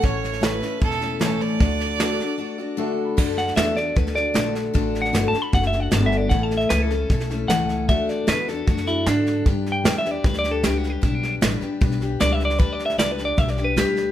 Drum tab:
CC |----------------|----------------|x---------------|----------------|
HH |----p-------p---|----p-----------|----p-------p---|----p-------p---|
SD |o-ooo-o-ooo-o-o-|o-o-o-o---------|o-ooo-o-ooo-o-o-|o-ooo-o-ooo-o-o-|
BD |o-------o-------|o---------------|o-------o-------|o-------o-------|

CC |----------------|----------------|----------------|----------------|
HH |----p-------p---|----p-------p---|----p-------p---|----p-------p---|
SD |o-ooo-o-ooo-o-o-|o-o-o-o-ooo-o-o-|o-o-o-o-ooo-o-o-|o-o-o-o-ooo-o-oo|
BD |o-------o-------|o-------o-------|o-------o-------|o-------o-------|

CC |----------------|
HH |----p-------p---|
SD |o-ooo-o-ooo-o-o-|
BD |o-------o-------|